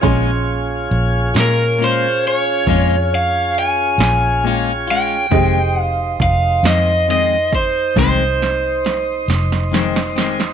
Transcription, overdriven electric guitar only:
0, 0, Header, 1, 2, 480
1, 0, Start_track
1, 0, Key_signature, -4, "minor"
1, 0, Tempo, 879765
1, 21, Time_signature, 12, 3, 24, 8
1, 5747, End_track
2, 0, Start_track
2, 0, Title_t, "Overdriven electric guitar"
2, 0, Program_c, 0, 29
2, 763, Note_on_c, 0, 70, 76
2, 999, Note_off_c, 0, 70, 0
2, 1004, Note_on_c, 0, 72, 75
2, 1239, Note_off_c, 0, 72, 0
2, 1242, Note_on_c, 0, 73, 78
2, 1717, Note_off_c, 0, 73, 0
2, 1719, Note_on_c, 0, 77, 80
2, 1957, Note_off_c, 0, 77, 0
2, 1960, Note_on_c, 0, 80, 89
2, 2440, Note_off_c, 0, 80, 0
2, 2440, Note_on_c, 0, 79, 89
2, 2677, Note_off_c, 0, 79, 0
2, 2679, Note_on_c, 0, 79, 90
2, 3175, Note_off_c, 0, 79, 0
2, 3175, Note_on_c, 0, 77, 90
2, 3393, Note_off_c, 0, 77, 0
2, 3396, Note_on_c, 0, 77, 81
2, 3635, Note_off_c, 0, 77, 0
2, 3637, Note_on_c, 0, 75, 80
2, 3853, Note_off_c, 0, 75, 0
2, 3878, Note_on_c, 0, 75, 73
2, 4116, Note_off_c, 0, 75, 0
2, 4120, Note_on_c, 0, 72, 59
2, 4353, Note_off_c, 0, 72, 0
2, 4360, Note_on_c, 0, 72, 63
2, 5048, Note_off_c, 0, 72, 0
2, 5747, End_track
0, 0, End_of_file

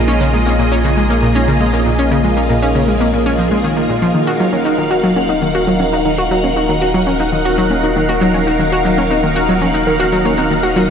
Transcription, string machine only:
0, 0, Header, 1, 2, 480
1, 0, Start_track
1, 0, Tempo, 508475
1, 75, Time_signature, 4, 2, 24, 8
1, 10291, End_track
2, 0, Start_track
2, 0, Title_t, "String machine"
2, 0, Program_c, 0, 50
2, 0, Note_on_c, 0, 58, 77
2, 0, Note_on_c, 0, 65, 70
2, 0, Note_on_c, 0, 68, 70
2, 0, Note_on_c, 0, 75, 88
2, 3875, Note_off_c, 0, 58, 0
2, 3875, Note_off_c, 0, 65, 0
2, 3875, Note_off_c, 0, 68, 0
2, 3903, Note_off_c, 0, 75, 0
2, 3914, Note_on_c, 0, 78, 86
2, 3915, Note_on_c, 0, 63, 78
2, 3916, Note_on_c, 0, 70, 69
2, 3916, Note_on_c, 0, 77, 72
2, 10291, Note_off_c, 0, 63, 0
2, 10291, Note_off_c, 0, 70, 0
2, 10291, Note_off_c, 0, 77, 0
2, 10291, Note_off_c, 0, 78, 0
2, 10291, End_track
0, 0, End_of_file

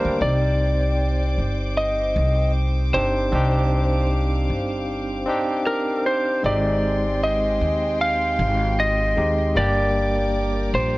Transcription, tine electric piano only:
0, 0, Header, 1, 2, 480
1, 0, Start_track
1, 0, Key_signature, -3, "minor"
1, 0, Tempo, 779221
1, 129, Time_signature, 4, 2, 24, 8
1, 6763, End_track
2, 0, Start_track
2, 0, Title_t, "Tine electric piano"
2, 0, Program_c, 0, 4
2, 0, Control_c, 0, 64, 127
2, 0, Note_on_c, 0, 55, 92
2, 0, Note_on_c, 0, 58, 80
2, 0, Note_on_c, 0, 62, 81
2, 0, Note_on_c, 0, 70, 97
2, 104, Note_off_c, 0, 55, 0
2, 107, Note_off_c, 0, 58, 0
2, 108, Note_off_c, 0, 62, 0
2, 110, Note_off_c, 0, 70, 0
2, 122, Note_on_c, 0, 60, 80
2, 137, Note_on_c, 0, 63, 76
2, 138, Control_c, 0, 64, 0
2, 142, Note_on_c, 0, 67, 85
2, 248, Control_c, 0, 64, 127
2, 1781, Note_off_c, 0, 60, 0
2, 1788, Note_off_c, 0, 63, 0
2, 1791, Note_off_c, 0, 67, 0
2, 1806, Note_on_c, 0, 60, 87
2, 1809, Note_on_c, 0, 62, 80
2, 1814, Note_on_c, 0, 63, 77
2, 1816, Note_on_c, 0, 67, 90
2, 2022, Note_off_c, 0, 60, 0
2, 2024, Note_off_c, 0, 62, 0
2, 2027, Note_off_c, 0, 63, 0
2, 2027, Note_off_c, 0, 67, 0
2, 2043, Note_on_c, 0, 60, 89
2, 2049, Note_on_c, 0, 62, 83
2, 2057, Note_on_c, 0, 63, 83
2, 2064, Note_on_c, 0, 67, 100
2, 3221, Note_off_c, 0, 60, 0
2, 3224, Note_off_c, 0, 62, 0
2, 3228, Note_off_c, 0, 63, 0
2, 3232, Note_off_c, 0, 67, 0
2, 3240, Note_on_c, 0, 60, 95
2, 3247, Note_on_c, 0, 62, 89
2, 3254, Note_on_c, 0, 63, 90
2, 3261, Note_on_c, 0, 67, 104
2, 3940, Note_off_c, 0, 60, 0
2, 3943, Note_off_c, 0, 62, 0
2, 3947, Note_off_c, 0, 63, 0
2, 3950, Note_off_c, 0, 67, 0
2, 3960, Note_on_c, 0, 56, 81
2, 3965, Note_on_c, 0, 60, 74
2, 3975, Note_on_c, 0, 63, 74
2, 3978, Control_c, 0, 64, 0
2, 3981, Note_on_c, 0, 67, 84
2, 4078, Control_c, 0, 64, 127
2, 5620, Note_off_c, 0, 56, 0
2, 5622, Note_off_c, 0, 60, 0
2, 5627, Note_off_c, 0, 63, 0
2, 5630, Note_off_c, 0, 67, 0
2, 5646, Note_on_c, 0, 56, 86
2, 5650, Note_on_c, 0, 60, 80
2, 5654, Note_on_c, 0, 63, 83
2, 5656, Note_on_c, 0, 67, 99
2, 5862, Note_off_c, 0, 56, 0
2, 5865, Note_off_c, 0, 60, 0
2, 5866, Note_off_c, 0, 63, 0
2, 5867, Note_off_c, 0, 67, 0
2, 5883, Note_on_c, 0, 55, 93
2, 5889, Note_on_c, 0, 58, 81
2, 5897, Note_on_c, 0, 62, 84
2, 5899, Control_c, 0, 64, 0
2, 5904, Note_on_c, 0, 67, 102
2, 6014, Control_c, 0, 64, 127
2, 6763, Note_off_c, 0, 55, 0
2, 6763, Note_off_c, 0, 58, 0
2, 6763, Note_off_c, 0, 62, 0
2, 6763, Note_off_c, 0, 67, 0
2, 6763, End_track
0, 0, End_of_file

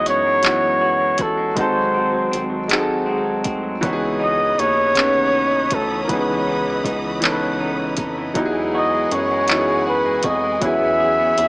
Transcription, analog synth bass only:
0, 0, Header, 1, 2, 480
1, 0, Start_track
1, 0, Key_signature, 4, "major"
1, 0, Tempo, 754717
1, 995, Time_signature, 6, 3, 24, 8
1, 7301, End_track
2, 0, Start_track
2, 0, Title_t, "Analog synth bass"
2, 0, Program_c, 0, 38
2, 42, Note_on_c, 0, 42, 94
2, 733, Note_off_c, 0, 42, 0
2, 761, Note_on_c, 0, 33, 95
2, 974, Note_off_c, 0, 33, 0
2, 1000, Note_on_c, 0, 32, 105
2, 1452, Note_off_c, 0, 32, 0
2, 1484, Note_on_c, 0, 32, 93
2, 2201, Note_on_c, 0, 38, 90
2, 2211, Note_off_c, 0, 32, 0
2, 2414, Note_off_c, 0, 38, 0
2, 2438, Note_on_c, 0, 37, 94
2, 2891, Note_off_c, 0, 37, 0
2, 2921, Note_on_c, 0, 39, 95
2, 3612, Note_off_c, 0, 39, 0
2, 3639, Note_on_c, 0, 38, 89
2, 3853, Note_off_c, 0, 38, 0
2, 3878, Note_on_c, 0, 37, 98
2, 4331, Note_off_c, 0, 37, 0
2, 4357, Note_on_c, 0, 37, 85
2, 5077, Note_on_c, 0, 41, 88
2, 5087, Note_off_c, 0, 37, 0
2, 5292, Note_off_c, 0, 41, 0
2, 5316, Note_on_c, 0, 40, 108
2, 5770, Note_off_c, 0, 40, 0
2, 5798, Note_on_c, 0, 42, 104
2, 6491, Note_off_c, 0, 42, 0
2, 6517, Note_on_c, 0, 41, 99
2, 6732, Note_off_c, 0, 41, 0
2, 6756, Note_on_c, 0, 40, 107
2, 7210, Note_off_c, 0, 40, 0
2, 7239, Note_on_c, 0, 40, 101
2, 7301, Note_off_c, 0, 40, 0
2, 7301, End_track
0, 0, End_of_file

